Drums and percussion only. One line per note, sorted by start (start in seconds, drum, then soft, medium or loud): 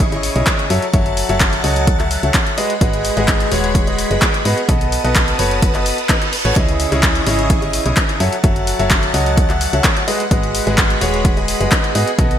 0.12 closed hi-hat soft
0.23 open hi-hat loud
0.36 closed hi-hat soft
0.47 kick loud
0.47 clap loud
0.47 closed hi-hat medium
0.59 closed hi-hat soft
0.70 open hi-hat loud
0.82 closed hi-hat soft
0.94 kick loud
0.94 closed hi-hat medium
1.06 closed hi-hat soft
1.17 open hi-hat medium
1.29 closed hi-hat soft
1.40 kick medium
1.40 clap loud
1.40 closed hi-hat medium
1.53 closed hi-hat soft
1.64 open hi-hat medium
1.76 closed hi-hat soft
1.87 kick loud
1.87 closed hi-hat medium
2.00 clap soft
2.00 closed hi-hat soft
2.11 open hi-hat medium
2.23 closed hi-hat soft
2.34 kick medium
2.34 clap loud
2.34 closed hi-hat medium
2.47 closed hi-hat soft
2.58 open hi-hat loud
2.70 closed hi-hat soft
2.81 kick loud
2.81 closed hi-hat medium
2.93 closed hi-hat soft
3.05 open hi-hat medium
3.17 closed hi-hat soft
3.28 kick medium
3.28 clap loud
3.28 closed hi-hat medium
3.40 closed hi-hat soft
3.52 open hi-hat loud
3.64 closed hi-hat soft
3.75 kick loud
3.75 closed hi-hat medium
3.87 closed hi-hat soft
3.99 open hi-hat loud
4.11 closed hi-hat soft
4.22 kick loud
4.22 clap loud
4.22 closed hi-hat medium
4.34 closed hi-hat soft
4.45 open hi-hat loud
4.58 closed hi-hat soft
4.69 kick loud
4.69 closed hi-hat medium
4.81 closed hi-hat soft
4.92 open hi-hat loud
5.05 closed hi-hat soft
5.16 kick medium
5.16 clap loud
5.16 closed hi-hat medium
5.28 closed hi-hat soft
5.39 open hi-hat loud
5.51 closed hi-hat soft
5.62 kick loud
5.62 closed hi-hat medium
5.75 clap soft
5.75 closed hi-hat soft
5.86 open hi-hat loud
5.98 closed hi-hat soft
6.09 kick loud
6.09 clap loud
6.09 closed hi-hat loud
6.22 closed hi-hat soft
6.33 open hi-hat loud
6.45 closed hi-hat soft
6.56 kick loud
6.56 closed hi-hat medium
6.69 closed hi-hat soft
6.80 open hi-hat medium
6.92 closed hi-hat soft
7.03 kick medium
7.03 clap loud
7.03 closed hi-hat medium
7.15 closed hi-hat soft
7.27 open hi-hat loud
7.39 closed hi-hat soft
7.50 kick loud
7.50 closed hi-hat medium
7.62 closed hi-hat soft
7.73 open hi-hat loud
7.86 closed hi-hat soft
7.97 kick loud
7.97 clap loud
7.97 closed hi-hat medium
8.09 closed hi-hat soft
8.20 open hi-hat loud
8.33 closed hi-hat soft
8.44 kick loud
8.44 closed hi-hat medium
8.56 closed hi-hat soft
8.67 open hi-hat loud
8.79 closed hi-hat soft
8.91 kick loud
8.91 clap loud
8.91 closed hi-hat medium
9.03 closed hi-hat soft
9.14 open hi-hat loud
9.26 closed hi-hat soft
9.37 kick loud
9.37 closed hi-hat medium
9.50 clap soft
9.50 closed hi-hat soft
9.61 open hi-hat loud
9.73 closed hi-hat soft
9.84 kick loud
9.84 clap loud
9.84 closed hi-hat medium
9.97 closed hi-hat soft
10.08 open hi-hat loud
10.20 closed hi-hat soft
10.31 kick loud
10.31 closed hi-hat medium
10.43 closed hi-hat soft
10.55 open hi-hat loud
10.67 closed hi-hat soft
10.78 kick loud
10.78 clap loud
10.78 closed hi-hat medium
10.90 closed hi-hat soft
11.01 open hi-hat loud
11.14 closed hi-hat soft
11.25 kick loud
11.25 closed hi-hat medium
11.37 closed hi-hat soft
11.48 open hi-hat loud
11.61 closed hi-hat soft
11.72 kick loud
11.72 clap loud
11.72 closed hi-hat medium
11.84 closed hi-hat soft
11.95 open hi-hat loud
12.07 closed hi-hat soft
12.19 kick loud
12.19 closed hi-hat medium
12.31 closed hi-hat soft